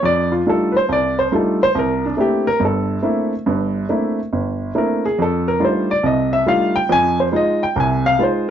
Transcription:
0.03 0.40 F2 medium
0.03 0.31 D5 medium
0.32 0.46 F4 medium
0.46 0.75 G3 medium
0.46 0.76 A3 soft
0.46 0.75 D4 soft
0.46 0.75 D#4 soft
0.46 0.76 F4 medium
0.46 0.75 A4 medium
0.72 0.74 B4 medium
0.77 0.90 C5 medium
0.89 1.26 C2 medium
0.89 1.18 D5 medium
1.19 1.32 C5 medium
1.32 1.61 G3 medium
1.32 1.61 A3 medium
1.32 1.61 D4 soft
1.32 1.61 D#4 medium
1.32 1.61 F4 medium
1.32 1.60 A4 medium
1.63 1.76 C5 loud
1.75 2.12 C2 medium
1.75 2.04 A#4 medium
2.06 2.17 D4 medium
2.17 2.47 A3 medium
2.17 2.47 A#3 soft
2.17 2.47 C4 medium
2.17 2.47 D4 medium
2.17 2.47 E4 medium
2.17 2.46 G4 medium
2.47 2.61 A#4 medium
2.60 2.97 G1 medium
2.60 2.97 G2 medium
2.65 3.29 A4 medium
3.03 3.32 A3 medium
3.03 3.33 A#3 soft
3.03 3.33 C4 medium
3.03 3.33 D4 medium
3.03 3.33 E4 medium
3.46 3.83 G1 medium
3.46 3.83 G2 medium
3.89 4.19 A3 medium
3.89 4.19 A#3 soft
3.89 4.19 C4 soft
3.89 4.19 D4 soft
3.89 4.19 E4 medium
4.33 4.69 G1 medium
4.75 5.04 A3 medium
4.75 5.04 A#3 medium
4.75 5.05 C4 medium
4.75 5.04 D4 soft
4.75 5.05 E4 medium
4.75 5.04 A#4 medium
5.05 5.19 G#4 medium
5.18 5.55 F2 medium
5.18 5.47 A4 medium
5.48 5.62 A#4 medium
5.60 5.90 G3 medium
5.60 5.90 A3 soft
5.60 5.90 D4 soft
5.60 5.90 D#4 soft
5.60 5.90 F4 medium
5.65 5.90 C5 medium
5.91 6.04 D5 medium
6.03 6.41 C2 medium
6.03 6.41 C3 medium
6.03 6.32 D#5 medium
6.33 6.47 E5 medium
6.46 6.76 G3 medium
6.46 6.76 A3 medium
6.46 6.76 D4 soft
6.46 6.76 D#4 medium
6.46 6.76 F4 medium
6.46 6.75 F5 medium
6.76 6.90 G5 medium
6.89 7.27 F2 medium
6.89 7.27 F3 medium
6.89 7.18 G#5 loud
7.20 7.33 C5 medium
7.32 7.62 G#3 medium
7.32 7.62 D#4 medium
7.32 7.62 F4 medium
7.36 7.62 D#5 medium
7.63 7.76 G5 medium
7.76 8.13 C2 medium
7.76 8.13 C3 medium
7.80 8.05 G#5 medium
8.06 8.19 F5 medium
8.19 8.48 G#3 medium
8.19 8.48 D#4 soft
8.19 8.49 F4 medium
8.19 8.22 B4 soft
8.23 8.48 C5 medium

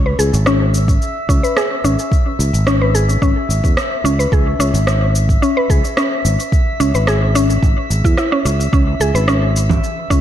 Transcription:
0.00 0.12 C#2 medium
0.00 10.21 E5 medium
0.06 0.18 B4 medium
0.19 0.30 C#2 medium
0.19 0.33 G#4 medium
0.19 shaker medium
0.34 0.96 G#1 loud
0.34 shaker soft
0.46 0.60 C#4 loud
0.46 cross-stick loud
0.46 shaker soft
0.74 shaker medium
0.88 kick medium
0.88 shaker soft
1.02 shaker soft
1.29 1.40 C#2 medium
1.29 1.42 C#4 loud
1.29 kick loud
1.29 shaker medium
1.43 1.55 B4 medium
1.43 shaker soft
1.57 1.71 G#4 medium
1.57 cross-stick loud
1.57 shaker soft
1.84 1.95 G#1 medium
1.84 1.98 C#4 medium
1.84 shaker medium
1.99 shaker soft
2.12 kick loud
2.12 shaker soft
2.39 2.50 C#2 medium
2.39 shaker medium
2.53 3.17 G#1 medium
2.53 shaker soft
2.67 2.80 C#4 loud
2.67 cross-stick loud
2.67 shaker soft
2.82 2.93 B4 medium
2.95 3.08 G#4 medium
2.95 shaker medium
3.09 shaker soft
3.22 3.33 G#1 medium
3.22 3.36 C#4 loud
3.22 kick loud
3.22 shaker soft
3.49 3.60 G#1 medium
3.49 shaker medium
3.64 3.74 E2 medium
3.64 kick loud
3.64 shaker soft
3.77 cross-stick loud
3.77 shaker soft
4.04 4.25 C#2 medium
4.04 4.18 C#4 loud
4.04 shaker medium
4.19 4.31 B4 medium
4.19 shaker soft
4.32 4.53 C#2 medium
4.32 4.46 G#4 medium
4.32 kick loud
4.32 shaker soft
4.59 4.70 C#2 medium
4.59 4.73 C#4 loud
4.59 shaker medium
4.74 5.37 G#1 medium
4.74 shaker soft
4.87 cross-stick loud
4.87 shaker soft
5.15 shaker medium
5.29 kick loud
5.29 shaker soft
5.42 5.55 C#4 medium
5.42 shaker soft
5.57 5.69 B4 medium
5.70 5.80 C#2 medium
5.70 5.83 G#4 medium
5.70 kick loud
5.70 shaker medium
5.85 shaker soft
5.97 6.11 C#4 medium
5.97 cross-stick loud
5.97 shaker soft
6.25 6.36 G#1 medium
6.25 shaker medium
6.40 shaker soft
6.52 kick loud
6.52 shaker soft
6.80 6.91 C#2 medium
6.80 6.93 C#4 medium
6.80 shaker medium
6.94 7.57 G#1 medium
6.94 7.06 B4 medium
6.94 shaker soft
7.07 7.21 G#4 medium
7.07 cross-stick loud
7.07 shaker soft
7.35 7.49 C#4 loud
7.35 shaker medium
7.50 shaker soft
7.63 7.73 G#1 medium
7.63 kick loud
7.63 shaker soft
7.90 8.01 G#1 medium
7.90 shaker medium
8.04 8.14 E2 medium
8.04 8.12 E4 medium
8.04 kick loud
8.04 shaker soft
8.17 8.31 E4 medium
8.17 cross-stick medium
8.17 shaker soft
8.32 8.44 C#4 loud
8.45 8.66 C#2 medium
8.45 8.58 C#4 medium
8.45 shaker medium
8.60 shaker soft
8.73 8.94 C#2 medium
8.73 8.99 C#4 medium
8.73 kick loud
8.73 shaker soft
9.00 9.11 C#2 medium
9.00 9.14 G#4 medium
9.00 shaker medium
9.14 9.77 G#1 medium
9.14 9.27 B4 medium
9.14 shaker soft
9.28 9.41 C#4 loud
9.28 cross-stick medium
9.28 shaker soft
9.56 shaker medium
9.70 kick medium
9.70 low conga medium
9.70 shaker soft
9.84 shaker soft
10.10 10.21 C#2 medium
10.10 10.21 C#4 loud
10.10 kick loud
10.10 shaker medium

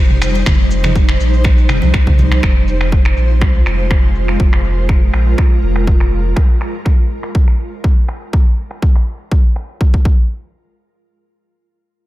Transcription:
0.00 0.43 F1 medium
0.00 2.39 G3 medium
0.00 2.39 D#4 medium
0.00 4.36 C5 medium
0.10 mid tom medium
0.22 finger snap medium
0.22 shaker medium
0.35 muted conga soft
0.35 shaker soft
0.46 1.17 F1 loud
0.46 finger snap medium
0.46 kick loud
0.46 low conga loud
0.46 shaker medium
0.71 muted conga medium
0.71 shaker loud
0.84 finger snap medium
0.84 mid tom medium
0.84 high conga loud
0.84 shaker soft
0.96 kick loud
0.96 shaker medium
1.09 finger snap medium
1.09 muted conga soft
1.09 high conga medium
1.20 1.71 A#1 medium
1.20 shaker medium
1.33 shaker soft
1.44 finger snap medium
1.44 kick loud
1.44 muted conga soft
1.44 shaker medium
1.58 shaker soft
1.69 1.80 F1 medium
1.69 finger snap medium
1.69 mid tom medium
1.69 shaker medium
1.82 1.92 C2 loud
1.82 high conga loud
1.82 shaker soft
1.94 2.40 C2 medium
1.94 finger snap medium
1.94 kick loud
1.94 muted conga soft
1.94 shaker medium
2.07 kick medium
2.07 low conga medium
2.18 mid tom medium
2.18 high conga medium
2.18 shaker medium
2.32 finger snap medium
2.32 muted conga medium
2.32 shaker soft
2.43 3.14 F1 loud
2.43 6.33 G#3 medium
2.43 6.33 F4 medium
2.43 finger snap medium
2.43 kick loud
2.43 shaker medium
2.68 shaker medium
2.81 finger snap medium
2.81 shaker soft
2.92 kick loud
2.92 shaker soft
3.05 finger snap medium
3.17 3.43 A#1 medium
3.17 shaker medium
3.30 shaker soft
3.41 3.62 C2 medium
3.41 finger snap medium
3.41 kick loud
3.41 shaker soft
3.55 shaker soft
3.66 4.37 F1 medium
3.66 finger snap medium
3.66 shaker medium
3.79 shaker soft
3.91 finger snap medium
3.91 kick loud
4.15 shaker medium
4.28 finger snap medium
4.28 shaker soft
4.40 5.10 F1 loud
4.40 6.35 A#4 medium
4.40 kick loud
4.53 finger snap medium
4.64 shaker medium
4.78 shaker soft
4.89 finger snap medium
4.89 kick loud
5.14 5.34 A#1 medium
5.14 finger snap medium
5.14 shaker medium
5.27 shaker soft
5.38 finger snap medium
5.38 kick loud
5.51 shaker soft
5.63 6.33 F1 loud
5.63 shaker medium
5.76 finger snap medium
5.76 shaker soft
5.87 kick loud
6.00 finger snap medium
6.12 shaker medium
6.25 shaker soft
6.36 finger snap medium
6.36 kick loud
6.61 finger snap medium
6.61 shaker medium
6.74 shaker soft
6.85 finger snap medium
6.85 kick loud
7.10 shaker medium
7.23 finger snap medium
7.23 shaker soft
7.35 kick loud
7.48 finger snap medium
7.59 shaker medium
7.73 shaker soft
7.84 finger snap medium
7.84 kick loud
8.09 finger snap medium
8.09 shaker medium
8.22 shaker soft
8.33 finger snap medium
8.33 kick loud
8.58 shaker medium
8.71 finger snap medium
8.82 kick loud
8.96 finger snap medium
9.07 shaker medium
9.20 shaker soft
9.31 finger snap medium
9.31 kick loud
9.56 finger snap medium
9.69 shaker soft
9.81 finger snap loud
9.81 kick loud
9.94 kick medium
10.05 kick loud

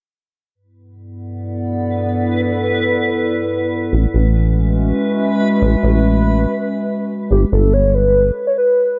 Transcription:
0.55 3.93 G2 medium
0.55 6.47 B4 medium
0.63 4.47 B3 medium
0.63 5.27 E4 medium
0.78 3.93 A4 medium
0.78 4.77 F#5 medium
0.92 3.93 D5 medium
3.93 4.07 A1 medium
3.93 7.31 G#3 medium
3.93 7.31 C#4 medium
4.12 4.93 A1 medium
4.12 7.31 B4 medium
4.19 7.31 F#4 medium
4.35 7.31 E5 medium
5.62 5.76 A1 loud
5.83 6.47 A1 medium
7.31 7.45 G1 loud
7.31 7.41 G4 loud
7.52 8.31 G1 medium
7.52 7.75 A4 loud
7.73 7.96 C#5 loud
7.95 8.47 B4 loud
8.47 8.52 C#5 loud
8.58 8.99 B4 loud

